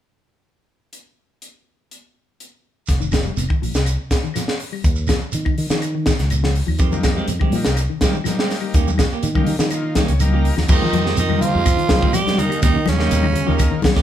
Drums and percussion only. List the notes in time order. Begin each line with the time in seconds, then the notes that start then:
0.93 closed hi-hat
1.42 closed hi-hat
1.91 closed hi-hat
2.40 closed hi-hat
2.87 kick, snare, closed hi-hat, shekere
3.01 shekere
3.12 kick, snare, closed hi-hat, claves, shekere
3.25 shekere
3.37 closed hi-hat, shekere
3.49 kick, claves
3.63 open hi-hat, shekere
3.74 snare, closed hi-hat, shekere
3.86 closed hi-hat, claves, shekere
4.11 kick, snare, closed hi-hat, shekere
4.24 shekere
4.34 snare, closed hi-hat, claves, shekere
4.48 snare
4.60 open hi-hat, shekere
4.73 claves
4.84 kick, closed hi-hat, shekere
4.95 shekere
5.07 kick, snare, closed hi-hat, claves, shekere
5.21 shekere
5.32 closed hi-hat, shekere
5.45 kick, claves
5.58 open hi-hat, shekere
5.70 snare, closed hi-hat, shekere
5.82 closed hi-hat, claves, shekere
6.06 kick, snare, closed hi-hat, shekere
6.19 snare, closed hi-hat, shekere
6.30 closed hi-hat, claves, shekere
6.44 snare
6.55 open hi-hat, shekere
6.68 claves
6.79 kick, closed hi-hat, shekere
6.92 high conga, shekere
7.03 kick, snare, closed hi-hat, claves, shekere
7.17 shekere
7.28 closed hi-hat, high conga, shekere
7.40 kick, high conga, claves
7.52 open hi-hat, shekere
7.65 snare, closed hi-hat, shekere
7.76 closed hi-hat, claves, shekere
8.01 kick, snare, closed hi-hat, high conga, shekere
8.14 shekere
8.24 snare, closed hi-hat, high conga, claves, shekere
8.39 snare
8.51 snare, open hi-hat, shekere
8.61 claves
8.74 kick, closed hi-hat, high conga, shekere
8.87 high conga, shekere
8.98 kick, snare, closed hi-hat, claves, shekere
9.12 shekere
9.23 closed hi-hat, high conga, shekere
9.35 kick, high conga, claves
9.46 open hi-hat, high conga, shekere
9.59 snare, closed hi-hat, shekere
9.70 closed hi-hat, high conga, claves, shekere
9.95 kick, snare, closed hi-hat, high conga, shekere
10.08 closed hi-hat, shekere
10.20 closed hi-hat, high conga, claves, shekere
10.45 open hi-hat, shekere
10.57 snare, claves
10.68 kick, crash, shekere
10.92 closed hi-hat, high conga, claves, shekere
11.06 snare
11.17 closed hi-hat, shekere
11.30 high conga, claves
11.41 closed hi-hat, low conga, shekere
11.66 kick, closed hi-hat, claves, shekere
11.79 closed hi-hat
11.89 kick, snare, closed hi-hat, high conga, low conga, shekere
12.03 kick
12.13 closed hi-hat, claves, shekere
12.27 snare, closed hi-hat, high conga
12.38 closed hi-hat, low conga, shekere
12.50 closed hi-hat, claves
12.62 kick, closed hi-hat, shekere
12.86 snare, closed hi-hat, high conga, claves, shekere
12.99 snare, high conga
13.11 closed hi-hat, shekere
13.22 high conga, claves
13.33 closed hi-hat, low conga, shekere
13.59 kick, closed hi-hat, claves, shekere
13.82 kick, snare, closed hi-hat, high conga, shekere
13.96 kick, snare, closed hi-hat